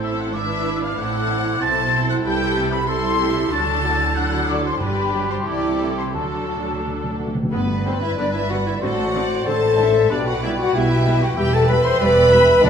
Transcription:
Already playing: A1 A2 C4 E4 A4 C5
0.02 E5 E6
0.19 F#5 F#6
0.34 G#1 G#2 D4 E4 B4 D5 E5 E6
0.83 F5 F6
0.97 A1 A2 C4 E4 A4 F#5 F#6
1.60 B1 B2 C4 E4 A4 C5 A5 A6
2.09 F#5 F#6
2.24 C2 C3 G3 E4 G4 A4 B4 G5 G6
2.56 A3 G4
2.72 B5
2.87 G3 E4 A4 C6
3.19 A3 G4
3.51 D2 D3 F#3 D4 F#4 A4 A5 A6
3.84 A3 E4 F#4
4.14 F#3 D4 A4 F#5 F#6
4.48 A3 F#4 D5 D6
4.64 C5 C6
4.80 G1 G2 G3 D4 G4 B4 B5
5.13 F#3 G3 G4
5.30 C5 C6
5.46 C2 C3 E3 E4 A4 D5 D6
5.80 A3 E4
5.98 C5 C6
6.14 D2 D3 F#3 D4 F#4 A4 A5
6.23 D3
6.31 D3
6.40 D3
6.48 A3 F#4
6.56 D3
6.64 D3
6.72 D3
6.80 D3
6.88 D3
6.95 D3
7.04 D3
7.11 D3
7.17 D3 A3 F#4
7.27 D3
7.35 D3
7.43 D3
7.51 G1 G2 D3 B3 B4 D5
7.84 D3 B3 C4 C5
8.01 E4 E5
8.16 G1 G2 D3 B3 D4 D5
8.33 E4 E5
8.49 D3 B3 F#4 F#5
8.66 E4 E5
8.81 A1 A2 D3 C4 F#4 A4 C5 F#5
9.15 D3 C4 D5
9.46 A1 A2 D3 C4 A4 C5 A5
9.79 D3 C4 E5
10.10 B1 B2 G3 B3 D4 B4 D5 G5
10.27 F#4 F#5
10.43 G3 B3 E4 E5
10.58 F#4 F#5
10.74 B1 B2 G3 B3 E4 G4 E5
11.07 G3 B3
11.22 F#4 F#5
11.37 E1 E2 G3 G4 B4 E5 G5
11.53 A4 A5
11.68 G3 B4 B5
11.83 C5 C6
11.99 E1 E2 G3 B4 D5 B5
12.30 G3 E5
12.63 D2 D3 F#3 A3 D4 D5 F#5

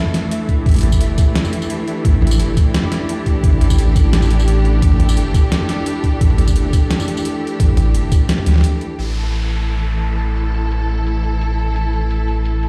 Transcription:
Already playing: E3 A3 E4 A4 E5
0.06 mid tom
0.14 D4, snare, closed hi-hat
0.31 closed hi-hat
0.49 kick, closed hi-hat
0.57 G4
0.66 A1, kick, closed hi-hat
0.69 closed hi-hat
0.71 closed hi-hat
0.74 closed hi-hat, mid tom
0.76 closed hi-hat
0.78 closed hi-hat
0.81 closed hi-hat
0.83 closed hi-hat, mid tom
0.92 kick, tambourine
1.00 G1, closed hi-hat
1.18 kick, closed hi-hat, tambourine
1.35 snare, closed hi-hat
1.45 mid tom, tambourine
1.53 closed hi-hat
1.62 tambourine
1.70 closed hi-hat
1.88 closed hi-hat
2.05 A1, kick, closed hi-hat
2.14 mid tom
2.22 mid tom
2.27 closed hi-hat
2.31 tambourine
2.39 G1, closed hi-hat
2.57 kick, closed hi-hat, tambourine
2.74 snare, closed hi-hat
2.83 mid tom
2.92 snare, closed hi-hat
3.09 closed hi-hat
3.26 kick, closed hi-hat
3.43 A1 A4, kick, closed hi-hat
3.53 mid tom
3.61 closed hi-hat, mid tom
3.70 kick, tambourine
3.78 closed hi-hat
3.96 kick, closed hi-hat, tambourine
4.13 snare, closed hi-hat
4.22 mid tom, tambourine
4.30 closed hi-hat
4.39 tambourine
4.48 closed hi-hat
4.65 closed hi-hat
4.82 A1, kick, closed hi-hat
4.92 mid tom
5.00 closed hi-hat, mid tom
5.09 tambourine
5.17 G1, closed hi-hat
5.34 kick, closed hi-hat, tambourine
5.52 snare, closed hi-hat
5.61 mid tom
5.69 snare, closed hi-hat
5.86 closed hi-hat
6.04 kick, closed hi-hat
6.21 A1, kick, closed hi-hat
6.30 mid tom
6.38 closed hi-hat, mid tom
6.48 kick, tambourine
6.55 G1, closed hi-hat
6.73 kick, closed hi-hat, tambourine
6.91 snare, closed hi-hat
7.00 mid tom, tambourine
7.08 closed hi-hat
7.17 tambourine
7.25 closed hi-hat
7.47 closed hi-hat
7.60 A1, kick, closed hi-hat
7.69 mid tom
7.77 closed hi-hat, mid tom
7.94 G1, closed hi-hat
8.12 kick, closed hi-hat, tambourine
8.29 snare, closed hi-hat
8.38 mid tom
8.46 D2, snare, closed hi-hat
8.49 snare
8.52 snare
8.56 snare
8.58 snare
8.61 snare, closed hi-hat
8.81 closed hi-hat
8.98 A1 E3, closed hi-hat, downlifter
9.10 A3 A4
9.16 closed hi-hat
9.19 closed hi-hat
9.21 closed hi-hat
9.26 E4, closed hi-hat
9.28 closed hi-hat
9.31 closed hi-hat
9.33 closed hi-hat
9.50 closed hi-hat
9.68 closed hi-hat
9.85 closed hi-hat
10.02 closed hi-hat
10.20 closed hi-hat
10.37 closed hi-hat
10.54 closed hi-hat
10.72 closed hi-hat
10.89 closed hi-hat
11.07 closed hi-hat
11.24 closed hi-hat
11.41 closed hi-hat
11.59 closed hi-hat
11.76 closed hi-hat
11.93 closed hi-hat
12.11 closed hi-hat
12.28 closed hi-hat
12.45 closed hi-hat
12.63 closed hi-hat

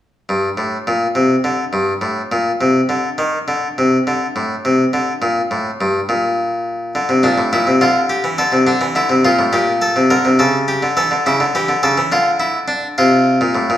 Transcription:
0.29 G2
0.57 A2
0.87 A#2
1.15 C3
1.44 D3
1.73 G2
2.01 A2
2.32 A#2
2.61 C3
2.89 D3
3.18 D#3
3.48 D3
3.78 C3
4.07 D3
4.36 A2
4.65 C3
4.93 D3
5.22 A#2
5.51 A2
5.81 G2
6.09 A#2
6.95 D3
7.09 C3
7.23 A#2 D4
7.38 A2
7.53 A#2 E4
7.67 C3
7.81 D3 F4
8.10 G4
8.24 E3
8.38 D3 A4
8.52 C3
8.67 D3 D4
8.81 E3
8.95 D3 E4
9.09 C3
9.25 A#2 F4
9.39 A2
9.53 A#2 G4
9.82 A4
9.96 C3
10.10 D3 A#4
10.25 C3
10.39 C#3 A4
10.68 G4
10.82 D3
10.97 E3 A4
11.11 D3
11.26 C#3 E4
11.40 D3
11.55 E3 G4
11.69 D3
11.83 C#3 A4
11.98 E3
12.12 D3 F4
12.40 E4
12.68 D4
12.98 C3 F4
13.41 A#2
13.55 A2
13.70 A#2

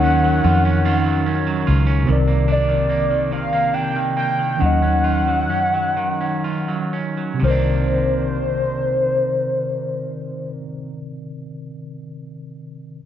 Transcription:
Already playing: D#2 D#3 F#3 C#4 D#4 F4 A#4 C#5 F#5
0.04 C#4
0.24 F#3
0.44 F2 F4
0.65 C#4
0.85 D#3 F4
1.05 F#3
1.26 C#4
1.47 F#3
1.67 C#2 F4
1.87 C#4
2.04 C3 C4
2.08 C2 D#3 A#4 D5
2.27 A#3
2.48 D4 D5
2.68 D#3
2.89 A#3
3.10 D#3
3.32 C3 F5
3.53 A#3
3.74 D4 G5
3.96 D#3
4.17 A#3 G5
4.39 D#3
4.57 D#3 C#4 F#5
4.61 D#2 F#3 D#4
4.66 D#5
4.82 C#4
5.04 F4
5.27 F#3
5.50 F#2 C#4
5.74 F#3
5.97 D#3
6.21 C#4
6.44 F4
6.68 F#3
6.93 C#2 C#4
7.17 F#3
7.34 C3
7.38 C3 C4
7.43 C2 D#3 A#4 C5
7.48 A#3 D4 D5

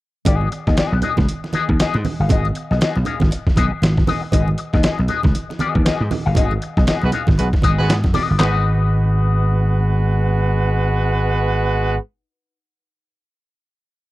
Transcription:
0.25 G#1 B3 F#4 G#4 D#5, kick, closed hi-hat, low conga
0.41 high conga
0.52 muted clean electric guitar stroke, closed hi-hat
0.67 D#2 B3 F#4 G#4 D#5, kick, snare
0.77 B3 F#4 G#4 D#5, snare, closed hi-hat
0.92 B1, muted clean electric guitar stroke
1.02 B3 F#4 G#4 D#5, closed hi-hat, low conga
1.17 C#2, muted clean electric guitar stroke, kick, snare, high conga
1.29 closed hi-hat
1.44 muted clean electric guitar stroke, snare, muted conga
1.53 B3 F#4 G#4 D#5, muted slap bass stroke, closed hi-hat, high conga
1.69 D#2, muted clean electric guitar stroke, kick
1.80 B3 F#4 G#4 D#5, snare, closed hi-hat
1.94 G#2, muted conga
2.05 muted clean electric guitar stroke, open hi-hat, high conga, low conga
2.20 G1 B3 F#4 G#4 F5
2.29 G#1 B3 F#4 G#4 D#5, kick, closed hi-hat, muted conga, low conga
2.45 muted conga, high conga
2.55 muted clean electric guitar stroke, closed hi-hat
2.71 B1 B3 F#4 G#4 D#5, snare
2.81 B3 F#4 G#4 D#5, snare, closed hi-hat, muted conga
2.96 B1, muted clean electric guitar stroke, muted conga
3.05 B3 F#4 G#4 F5, closed hi-hat, low conga
3.20 G#1, muted clean electric guitar stroke, kick, snare, high conga
3.31 muted clean electric guitar stroke, closed hi-hat, muted conga
3.47 muted slap bass stroke, muted clean electric guitar stroke, kick, snare
3.56 B1 B3 F#4 G#4 D#5, kick, closed hi-hat, high conga
3.72 muted clean electric guitar stroke
3.82 G#1, snare, closed hi-hat, muted conga
3.97 muted clean electric guitar stroke, kick, snare
4.07 B3 F#4 G#4 D#5, snare, open hi-hat, high conga, low conga
4.23 muted clean electric guitar stroke
4.32 G#1 B3 F#4 G#4 D#5, kick, closed hi-hat, muted conga, low conga
4.48 high conga
4.58 muted clean electric guitar stroke, closed hi-hat
4.73 D#2 B3 F#4 G#4 D#5, kick, snare
4.83 B3 F#4 G#4 D#5, snare, closed hi-hat, muted conga
4.98 B1, muted clean electric guitar stroke, muted conga
5.08 B3 F#4 G#4 D#5, closed hi-hat, low conga
5.23 C#2, muted clean electric guitar stroke, kick, snare, high conga
5.35 closed hi-hat, muted conga
5.49 muted clean electric guitar stroke, snare, muted conga
5.59 B3 F#4 G#4 D#5, muted slap bass stroke, closed hi-hat, high conga
5.75 D#2, muted clean electric guitar stroke, kick
5.85 B3 F#4 G#4 D#5, snare, closed hi-hat, muted conga
6.01 G#2
6.11 muted clean electric guitar stroke, open hi-hat, high conga, low conga
6.26 G1 B3 F#4 G#4 F5
6.35 G#1 B3 F#4 G#4 D#5, kick, closed hi-hat, muted conga, low conga
6.51 high conga
6.62 muted clean electric guitar stroke, closed hi-hat
6.77 B1 B3 F#4 G#4 D#5, kick, snare
6.87 B3 F#4 G#4 D#5, snare, closed hi-hat, muted conga
7.02 B1 G#3 B3 F#4 B4, muted clean electric guitar stroke, muted conga
7.12 B3 F#4 G#4 F5, closed hi-hat, low conga
7.27 G#1, muted clean electric guitar stroke, kick, snare, high conga
7.38 B1 G#3 B3 F#4 B4, muted clean electric guitar stroke, closed hi-hat, muted conga
7.53 muted clean electric guitar stroke, kick, snare, muted conga
7.62 G#1 B3 F#4 G#4 D#5, kick, closed hi-hat, high conga
7.79 G#1 G#3 B3 F#4 B4, muted clean electric guitar stroke
7.89 G#2, snare, closed hi-hat
8.04 F#2, muted clean electric guitar stroke, kick, snare, muted conga
8.13 B3 F#4 G#4 D#5, snare, open hi-hat, high conga, low conga
8.30 G1, muted clean electric guitar stroke
8.38 G#1 G#3 B3 D#4 F#4 B4, snare, clap, high conga
8.43 D#5

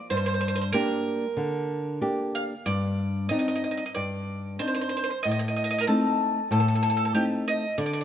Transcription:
0.10 G2 C5
0.17 C5
0.26 C5
0.34 C5
0.41 C5
0.48 C5
0.56 C5
0.61 C5
0.72 A#3 D4 G4 A#4
1.37 D3
2.01 A#3 D4 G4
2.35 F5
2.66 G2 D5
3.29 C4 D4 D#4 D#5
3.39 D#5
3.48 D#5
3.56 D#5
3.64 D#5
3.71 D#5
3.77 D#5
3.86 D#5
3.95 G2 D5
4.59 C4 D4 D#4 C5
4.67 C5
4.74 C5
4.81 C5
4.89 C5
4.97 C5
5.04 C5
5.10 C5
5.23 A2 D#5
5.31 D#5
5.39 D#5
5.48 D#5
5.56 D#5
5.64 D#5
5.71 D#5
5.78 A#4 D#5
5.87 A3 C4 D#4 A4
6.51 A2 A4
6.60 A4
6.68 A4
6.75 A4
6.83 A4
6.90 A4
6.97 A4
7.05 A4
7.14 A3 C4 D#4 G4
7.48 D#5
7.78 D3 D5
7.86 D5
7.93 D5
8.01 D5

